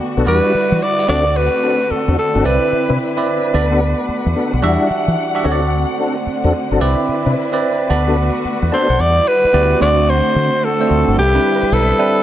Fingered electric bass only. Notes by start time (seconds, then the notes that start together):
0.17 B1
0.27 E2
0.54 muted fingered electric bass stroke
0.72 E3
1.09 D2
1.91 muted fingered electric bass stroke
2.08 E2
2.35 G1
2.45 C2
2.72 muted fingered electric bass stroke
2.90 C3
3.54 D2
4.08 muted fingered electric bass stroke
4.26 E2
4.53 B1
4.63 E2
4.90 muted fingered electric bass stroke
5.08 E3
5.45 D2
6.26 muted fingered electric bass stroke
6.44 E2
6.71 G1
6.81 C2
7.08 muted fingered electric bass stroke
7.26 C3
7.90 D2
8.45 muted fingered electric bass stroke
8.62 E2
8.89 B1
8.99 E2
9.44 muted fingered electric bass stroke
9.54 D2
9.81 D2
10.36 D3
10.90 D2
11.08 G1
11.18 C2
11.62 muted fingered electric bass stroke
11.72 B1